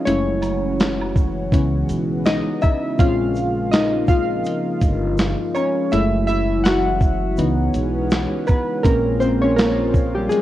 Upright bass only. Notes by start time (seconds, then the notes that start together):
0.07 F#1
1.52 C#2
1.90 B1
2.99 A#1
4.82 G1
5.93 F#1
7.38 C#2
7.75 B1
8.85 A#1